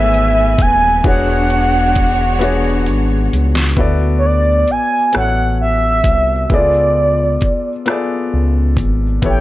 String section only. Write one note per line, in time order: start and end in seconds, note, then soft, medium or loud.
0.00 1.02 E3 medium
0.00 1.02 A3 medium
0.00 1.01 B3 medium
0.00 1.01 G#5 medium
1.04 3.75 G#3 medium
1.04 3.75 D4 medium
1.04 3.74 F#4 medium
1.04 3.75 C#5 medium